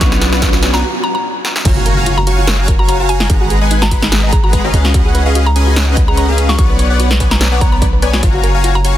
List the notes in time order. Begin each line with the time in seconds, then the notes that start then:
Already playing: riser
0.00 B1 F#3 B3 C#4 D4 B4 C#5 D5 F#5 C#6, kick, snare, closed hi-hat
0.12 snare
0.21 snare, closed hi-hat
0.33 B3 B4 C#5 D5 F#5, snare
0.42 kick, snare, closed hi-hat
0.53 snare
0.63 B3 B4 C#5 D5 G#5, snare, closed hi-hat
0.74 A#5, snare
1.04 A#5
1.15 A#5
1.45 snare
1.56 snare
1.65 F#1 F4 F#4 C#5 F5 G#5 A#5, kick, closed hi-hat, crash, impact
1.76 F#4
1.86 A#4, closed hi-hat
1.97 F#4 C#5 F5 G#5 A#5
2.06 F4, closed hi-hat
2.18 F#4 A#5
2.27 F#4 C#5 F5 G#5 C#6, closed hi-hat
2.38 F4
2.47 A#4, snare, closed hi-hat
2.58 F#4 C#5 F5 G#5 A#5
2.68 A#4, kick, closed hi-hat
2.79 F#4 A#5
2.89 C#5 A#5, closed hi-hat
3.00 F#4 C#5 F5 G#5 A#5
3.09 F#4 G#5, closed hi-hat
3.20 F4, snare
3.30 G#1 G#3 D#4 G#4 B4 F#5 A#5, kick, closed hi-hat
3.41 F#4
3.50 G#4, closed hi-hat
3.61 G#3 G#4 B4 D#5 F#5 G#5
3.71 D#4, closed hi-hat
3.82 F#4 A#5, snare
3.91 G#3 F#4 G#4 B4 F#5 B5, kick, closed hi-hat
4.02 D#4, snare
4.12 G#4, snare, closed hi-hat
4.23 G#3 G#4 B4 D#5 F#5 A#5
4.33 G#4 A#5, kick, closed hi-hat
4.44 F#4 A#5
4.53 B4, kick, closed hi-hat
4.64 C#4 F#4 G#4 B4 D#5 F5
4.74 C#2 G#4, closed hi-hat
4.85 F#4, snare
4.94 C#4 F#4 G#4 B4 D#5 F#5, kick, closed hi-hat
5.05 G#4
5.15 B4, closed hi-hat
5.26 C#4 G#4 B4 D#5 F5 F#5
5.35 F#4, closed hi-hat
5.46 G#4 A#5
5.56 C#4 G#4 B4 D#5 G#5, closed hi-hat
5.67 F#4
5.76 B4, snare, closed hi-hat
5.87 C#4 G#4 B4 D#5 F#5
5.97 B4, kick, closed hi-hat
6.08 G#4 A#5
6.17 C#5 A#5, closed hi-hat
6.28 C#4 G#4 B4 D#5 F5
6.38 G#4, closed hi-hat
6.49 F#4 C#6, snare
6.58 B1 B3 F#4 B4 C#5 D5 F#5 C#6, kick, closed hi-hat
6.70 B4
6.79 C#5, closed hi-hat
6.90 B3 B4 C#5 D5 F#5
7.00 F#4, closed hi-hat
7.11 B4, snare
7.20 B3 B4 C#5 D5 G#5, kick, closed hi-hat
7.31 F#4 A#5, snare
7.41 C#5, snare, closed hi-hat
7.52 B3 B4 C#5 D5 F#5
7.61 C#5 A#5, kick, closed hi-hat
7.72 B3 B4 C#5 D5 A#5 B5
7.82 D5, kick, closed hi-hat
7.93 B4
8.02 B3 B4 C#5 D5 G#5, closed hi-hat
8.13 F#4, snare
8.23 F#1 F4 F#4 C#5 F5 G#5 A#5, kick, closed hi-hat
8.34 F#4
8.43 A#4, closed hi-hat
8.54 F#4 C#5 F5 G#5 A#5
8.64 F4, closed hi-hat
8.75 F#4 A#5
8.84 F#4 C#5 F5 G#5 C#6, closed hi-hat